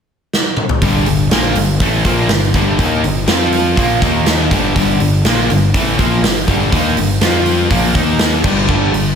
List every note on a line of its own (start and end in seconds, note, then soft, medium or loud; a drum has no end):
0.33 snare medium
0.57 mid tom medium
0.69 floor tom loud
0.82 1.05 G1 medium
0.82 1.07 G2 medium
0.82 1.07 D3 loud
0.82 1.07 G3 loud
0.82 kick loud
0.82 open hi-hat medium
1.06 1.29 G1 medium
1.06 1.27 G2 medium
1.06 1.27 D3 medium
1.06 open hi-hat medium
1.30 1.54 A#1 medium
1.30 1.55 A#2 medium
1.30 1.56 F3 medium
1.30 1.56 A#3 medium
1.30 snare loud
1.30 open hi-hat medium
1.55 1.78 G1 medium
1.55 1.76 G2 medium
1.55 1.76 D3 medium
1.55 open hi-hat medium
1.80 2.03 A1 medium
1.80 2.05 A2 medium
1.80 2.05 E3 loud
1.80 2.06 A3 loud
1.80 kick loud
1.80 open hi-hat medium
2.05 2.28 A#1 medium
2.05 2.29 A#2 medium
2.05 2.30 F3 medium
2.05 2.30 A#3 loud
2.05 kick loud
2.05 open hi-hat medium
2.29 2.52 G1 medium
2.29 2.50 G2 medium
2.29 2.51 D3 medium
2.29 snare loud
2.29 open hi-hat medium
2.54 2.77 G1 medium
2.54 2.79 G2 medium
2.54 2.78 D3 medium
2.54 2.79 G3 loud
2.54 kick loud
2.54 open hi-hat medium
2.79 3.02 D#2 medium
2.79 3.03 D#3 medium
2.79 3.03 A#3 loud
2.79 3.04 D#4 loud
2.79 kick loud
2.79 open hi-hat medium
3.03 3.26 G1 medium
3.03 3.23 G2 medium
3.03 3.24 D3 medium
3.03 open hi-hat medium
3.27 3.74 F2 medium
3.27 3.76 F3 loud
3.27 3.76 C4 medium
3.27 3.76 F4 loud
3.27 snare loud
3.27 open hi-hat medium
3.52 open hi-hat medium
3.76 4.00 A#1 medium
3.76 4.01 A#2 medium
3.76 4.01 F3 medium
3.76 4.01 A#3 loud
3.76 kick loud
3.76 open hi-hat medium
4.01 4.48 D#2 loud
4.01 4.50 D#3 medium
4.01 4.51 A#3 medium
4.01 4.51 D#4 loud
4.01 kick loud
4.01 open hi-hat medium
4.26 snare loud
4.26 open hi-hat medium
4.51 4.74 G1 medium
4.51 4.74 G2 medium
4.51 4.74 D3 medium
4.51 4.75 G3 loud
4.51 kick loud
4.51 open hi-hat medium
4.75 4.99 G1 medium
4.75 4.99 G2 medium
4.75 4.99 D3 loud
4.75 5.00 G3 loud
4.75 kick loud
4.75 open hi-hat medium
5.00 5.23 G1 medium
5.00 5.20 G2 medium
5.00 5.20 D3 medium
5.00 open hi-hat medium
5.25 5.48 A#1 medium
5.25 5.49 A#2 medium
5.25 5.49 F3 loud
5.25 5.49 A#3 medium
5.25 snare loud
5.25 open hi-hat medium
5.49 5.72 G1 medium
5.49 5.70 G2 medium
5.49 5.70 D3 medium
5.49 open hi-hat medium
5.74 5.97 A1 medium
5.74 5.98 A2 medium
5.74 5.99 E3 loud
5.74 5.99 A3 loud
5.74 kick loud
5.74 open hi-hat medium
5.99 6.22 A#1 loud
5.99 6.23 A#2 medium
5.99 6.23 F3 medium
5.99 6.23 A#3 medium
5.99 kick loud
5.99 open hi-hat medium
6.23 6.46 G1 medium
6.23 6.43 G2 medium
6.23 6.43 D3 medium
6.23 snare loud
6.23 open hi-hat medium
6.47 6.71 G1 medium
6.47 6.71 G2 medium
6.47 6.71 D3 medium
6.47 6.72 G3 loud
6.47 kick loud
6.47 open hi-hat medium
6.72 6.95 D#2 medium
6.72 6.96 D#3 medium
6.72 6.97 A#3 loud
6.72 6.97 D#4 loud
6.72 kick loud
6.72 open hi-hat medium
6.97 7.20 G1 medium
6.97 7.17 G2 medium
6.97 7.17 D3 medium
6.97 open hi-hat medium
7.21 7.67 F2 medium
7.21 7.69 F3 medium
7.21 7.70 C4 medium
7.21 7.69 F4 loud
7.21 snare loud
7.21 open hi-hat medium
7.46 open hi-hat medium
7.69 7.94 A#1 medium
7.69 7.94 A#2 medium
7.69 7.94 F3 medium
7.69 7.94 A#3 loud
7.69 kick loud
7.69 open hi-hat medium
7.94 8.41 D#2 medium
7.94 8.43 D#3 medium
7.94 8.44 A#3 medium
7.94 8.44 D#4 medium
7.94 kick loud
7.94 open hi-hat medium
8.19 snare loud
8.19 open hi-hat medium
8.44 8.67 G1 medium
8.44 8.68 G2 medium
8.44 8.68 D3 medium
8.44 8.68 G3 medium
8.44 kick loud
8.44 crash medium
8.69 8.92 G1 medium
8.69 8.91 G2 medium
8.69 8.91 D3 medium
8.69 8.93 G3 loud
8.69 kick loud
8.93 9.15 G1 medium
8.93 9.13 G2 medium
8.93 9.13 D3 medium
8.93 open hi-hat medium